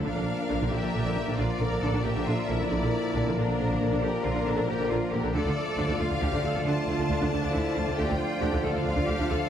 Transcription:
0.04 double bass section A#1, viola section D3 D4, trombone section D3 F3, french horn section A#3 D4, cello section D4, violin section A#4 D5 F5
0.16 double bass section A#1, viola section D3 D4
0.49 double bass section A#1, viola section D3 D4
0.61 double bass section A#1, viola section D3 D4
0.71 double bass section A#1, viola section D3 A#3, cello section G4, violin section E5
0.82 double bass section A#1, viola section D3 D4
0.93 double bass section A#1, viola section D3 D4
1.05 double bass section A#1, viola section D3 D4
1.16 double bass section A#1, viola section D3 A#3
1.27 double bass section A#1, viola section D3 D4
1.38 double bass section A#1, viola section D3 D4, cello section F4, violin section D5
1.59 double bass section A#1, viola section D3 A#3, cello section A#4
1.71 double bass section A#1, viola section D3 D4
1.82 double bass section A#1, viola section D3 D4, cello section A4
1.93 double bass section A#1, viola section D3 D4
2.04 double bass section A#1, viola section D3 A#3, cello section G4, violin section E5
2.15 double bass section A#1, viola section D3 D4
2.26 double bass section A#1, viola section D3 D4, cello section F4
2.48 double bass section A#1, viola section D3 A#3, cello section E4
2.61 double bass section A#1, viola section D3 D4
2.71 double bass section A#1, viola section D3 D4, violin section D5
2.82 double bass section A#1, viola section D3 D4
3.14 double bass section A#1, viola section D3 D4
3.27 double bass section A#1, viola section D3 D4
3.37 double bass section A#1, viola section D3 A#3, cello section D4, violin section A#4
3.48 double bass section A#1, viola section D3 D4
3.59 double bass section A#1, viola section D3 D4
3.70 double bass section A#1, viola section D3 D4
3.81 double bass section A#1, viola section D3 A#3
3.92 double bass section A#1, viola section D3 D4
4.02 double bass section A#1, viola section D3 D4, cello section G4, violin section A#4
4.24 double bass section A#1, viola section D3 A#3, cello section F4
4.34 double bass section A#1, viola section D3 D4
4.46 double bass section A#1, viola section D3 D4, cello section D4
4.57 double bass section A#1, viola section D3 D4
4.67 double bass section A#1, viola section D3 A#3, cello section G4
4.79 double bass section A#1, viola section D3 D4
4.90 double bass section A#1, viola section D3 D4, cello section F4
5.12 double bass section A#1, viola section D3 A#3, cello section G4
5.23 double bass section A#1, viola section D3 D4
5.33 double bass section D2, trombone section D3 F3, viola section D3 D4, french horn section A3 D4, violin section F4 D5, cello section A4
5.45 double bass section D2, viola section D3 D4
5.78 double bass section D2, viola section D3 D4
5.89 double bass section D2, viola section D3 D4
5.99 double bass section D2, viola section D3 A3, cello section F4, violin section F5
6.10 double bass section D2, viola section D3 D4
6.21 double bass section D2, viola section D3 D4, cello section G4
6.33 double bass section D2, viola section D3 D4
6.43 double bass section D2, viola section D3 A3, cello section A4
6.54 double bass section D2, viola section D3 D4
6.65 double bass section D2, viola section D3 D4, cello section F4, violin section A5
6.87 double bass section D2, viola section D3 A3
6.99 double bass section D2, viola section D3 D4
7.10 double bass section D2, viola section D3 D4
7.21 double bass section D2, viola section D3 D4
7.33 double bass section D2, viola section D3 A3, cello section D4
7.42 double bass section D2, viola section D3 D4
7.54 double bass section D2, viola section D3 D4, cello section E4
7.76 double bass section D2, viola section D3 A3, cello section F4
7.87 double bass section D2, viola section D3 D4
7.98 double bass section D2, viola section D3 D4, cello section G4, violin section G5
8.09 double bass section D2, viola section D3 D4
8.20 cello section F4
8.41 double bass section D2, viola section D3 D4, cello section G4
8.52 double bass section D2, viola section D3 D4
8.62 double bass section D2, viola section D3 A3, cello section A4, violin section F5
8.75 double bass section D2, viola section D3 D4
8.85 double bass section D2, viola section D3 D4, cello section F4
8.96 double bass section D2, viola section D3 D4
9.07 double bass section D2, viola section D3 A3, cello section G4
9.19 double bass section D2, viola section D3 D4
9.30 double bass section D2, viola section D3 D4, cello section A4

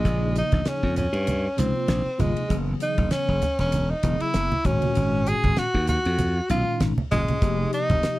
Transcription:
Already playing: tenor saxophone G#3
0.05 slap bass A#1, tine electric piano C#3 F3 A#3 D#4 G#4, kick, hi-hat pedal, ride
0.36 tenor saxophone D#4, hi-hat pedal, ride
0.52 slap bass A#1, kick, snare, ride, high conga, low conga
0.65 tenor saxophone C#4, muted slap bass stroke, snare, hi-hat pedal, ride
0.83 slap bass F2, kick
0.96 tenor saxophone C#4, hi-hat pedal, ride, low conga
1.13 slap bass G2, ride
1.27 hi-hat pedal, ride, high conga
1.57 slap bass C#2, tine electric piano C3 F3 A#3 D#4 F4, tenor saxophone C4, hi-hat pedal, ride
1.88 slap bass A#1, snare, hi-hat pedal, ride
2.18 slap bass G1, tine electric piano C3 F3 A#3 D#4 F4, tenor saxophone G#3, hi-hat pedal, ride, low conga
2.37 ride
2.48 slap bass F#1, tine electric piano C#3 E3 F#3 B3 G#4, kick, hi-hat pedal, ride
2.80 tenor saxophone D#4, hi-hat pedal, ride
2.98 slap bass F#1, kick, ride, high conga, low conga
3.11 tenor saxophone C#4, snare, hi-hat pedal, ride
3.29 slap bass F#1, kick
3.42 hi-hat pedal, ride, low conga
3.59 slap bass E1, tenor saxophone C#4, snare, ride
3.72 hi-hat pedal, ride, high conga
3.91 tenor saxophone D#4
4.03 slap bass E1, tine electric piano C#3 F#3 B3 E4 G#4, kick, hi-hat pedal, ride
4.20 tenor saxophone E4, muted slap bass stroke, ride
4.34 slap bass F#1, snare, hi-hat pedal, ride
4.52 high conga
4.65 slap bass G#1, tine electric piano A#2 D#3 G#3 C#4 F#4, tenor saxophone C#4, kick, hi-hat pedal, ride, low conga
4.82 ride, high conga
4.95 slap bass G#1, hi-hat pedal, ride
5.26 tenor saxophone G#4, hi-hat pedal, ride
5.43 slap bass G#1, kick, ride, high conga, low conga
5.56 tenor saxophone F#4, muted slap bass stroke, snare, hi-hat pedal, ride
5.74 slap bass D#2, kick
5.87 tenor saxophone F#4, hi-hat pedal, ride, low conga
6.05 slap bass F2, ride
6.18 hi-hat pedal, ride, high conga
6.49 slap bass B1, tine electric piano A#2 D#3 G#3 C#4 D#4, tenor saxophone F4, hi-hat pedal, ride
6.80 slap bass G#1, snare, hi-hat pedal, ride
6.98 muted slap bass stroke, high conga
7.11 slap bass F#1, tine electric piano A#2 D#3 G#3 C#4 F4, tenor saxophone G#3, hi-hat pedal, ride, low conga
7.28 ride, high conga
7.41 slap bass F1, tine electric piano C3 F3 A#3 D#4 G4, kick, hi-hat pedal, ride
7.73 tenor saxophone D#4, hi-hat pedal, ride
7.90 slap bass F1, kick, snare, ride, high conga, low conga
8.03 snare, hi-hat pedal, ride

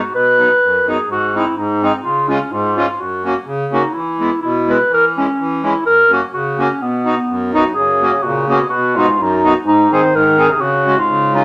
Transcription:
Already playing: clarinet F#4
0.12 accordion B2, clarinet B4
0.38 accordion F#3 B3 D#4
0.61 accordion F#2
0.87 accordion F#3 B3 D#4, clarinet G#4
1.07 accordion G#2
1.11 clarinet F#4
1.34 accordion G#3 C4 D#4, clarinet E4
1.56 accordion G#2, clarinet D#4
1.83 accordion G#3 C4 D#4
2.03 accordion C#3, clarinet F4
2.28 accordion G#3 C#4 F4, clarinet C#4
2.51 accordion G#2, clarinet F4
2.76 accordion G#3 C#4 F4, clarinet F4
2.98 accordion F#2, clarinet F#4
3.25 accordion A#3 C#4 F#4
3.45 accordion C#3
3.72 accordion A#3 C#4 F#4, clarinet D#4
3.93 accordion E3, clarinet E4
4.19 accordion G#3 B3 E4
4.42 accordion B2, clarinet E4
4.68 accordion G#3 B3 E4, clarinet B4
4.89 accordion E3
4.93 clarinet A#4
5.17 accordion G#3 C#4 E4, clarinet C#4
5.39 accordion E3
5.63 accordion G#3 C#4 E4, clarinet E4
5.85 accordion F#2, clarinet A#4
6.10 accordion A#3 C#4 F#4, clarinet F#4
6.33 accordion C#3, clarinet F#4
6.58 accordion A#3 C#4 F#4, clarinet C#4
6.79 accordion B2, clarinet B3
7.04 accordion B3 D#4 F#4
7.28 accordion F#2
7.53 euphonium F#2, accordion B3 D#4 F#4, clarinet D#4
7.74 accordion F#2, euphonium C#3, clarinet G#4
8.01 accordion A#3 C#4 F#4
8.23 euphonium A#2, accordion C#3, clarinet F#4
8.49 euphonium B2, accordion A#3 C#4 F#4, clarinet G#4
8.69 euphonium B2, accordion B2, clarinet F#4
8.96 euphonium G#2, accordion B3 D#4 F#4, clarinet F4
9.18 accordion F#2, euphonium F#2, clarinet D#4
9.44 accordion B3 D#4 F#4
9.65 euphonium G#2, accordion G#2, clarinet D#4
9.91 euphonium D#3, accordion C4 D#4 G#4, clarinet C5
10.12 accordion G#2, euphonium D#3, clarinet A#4
10.37 accordion C4 D#4 G#4
10.50 euphonium C3, clarinet G#4
10.58 accordion C#3, euphonium C#3, clarinet F#4
10.86 accordion G#3 C#4 F#4
10.97 euphonium G#2, clarinet F4
11.08 accordion C#3
11.34 euphonium F#2, accordion G#3 C#4 F4, clarinet D#4

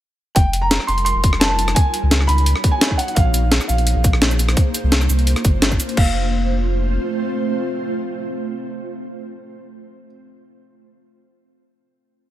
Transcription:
0.35 sub bass F1, ambient pad D#4, grand piano G5, kick, closed hi-hat
0.53 closed hi-hat
0.62 grand piano A#5
0.71 snare, closed hi-hat
0.80 cross-stick
0.87 sub bass F1, grand piano C6, closed hi-hat
0.98 closed hi-hat
1.05 grand piano C6, closed hi-hat
1.15 sub bass F1
1.24 kick, closed hi-hat
1.33 cross-stick
1.40 grand piano A5, snare, closed hi-hat
1.59 closed hi-hat
1.68 cross-stick, closed hi-hat
1.75 grand piano G#5, kick, closed hi-hat
1.94 closed hi-hat
2.03 sub bass C#2
2.11 snare, closed hi-hat
2.21 cross-stick
2.27 sub bass C#2, grand piano B5, closed hi-hat
2.38 closed hi-hat
2.46 closed hi-hat
2.56 cross-stick
2.64 kick, closed hi-hat
2.71 grand piano G#5
2.81 snare, closed hi-hat
2.91 kick
2.97 grand piano F#5, closed hi-hat
3.08 closed hi-hat
3.15 sub bass A#1, ambient pad A#3 C5, grand piano F5, kick, closed hi-hat
3.34 closed hi-hat, cabasa
3.52 snare, closed hi-hat
3.61 cross-stick, cabasa
3.68 sub bass A#1, grand piano F5, closed hi-hat, cabasa
3.78 closed hi-hat
3.87 closed hi-hat
3.96 sub bass A#1
4.04 kick, closed hi-hat, cabasa
4.13 cross-stick
4.22 snare, closed hi-hat
4.31 cabasa
4.39 closed hi-hat, cabasa
4.49 cross-stick, closed hi-hat
4.57 kick, closed hi-hat
4.74 closed hi-hat, cabasa
4.84 sub bass C2
4.92 snare, closed hi-hat
5.01 cross-stick, cabasa
5.09 sub bass C2, closed hi-hat, cabasa
5.19 closed hi-hat
5.27 closed hi-hat
5.36 cross-stick, closed hi-hat
5.45 sub bass G1, kick, closed hi-hat, cabasa
5.62 snare, closed hi-hat
5.71 kick, cabasa
5.80 closed hi-hat, cabasa
5.89 closed hi-hat
5.97 sub bass F1, ambient pad A3 C4 F4 C5, grand piano F5, kick, crash

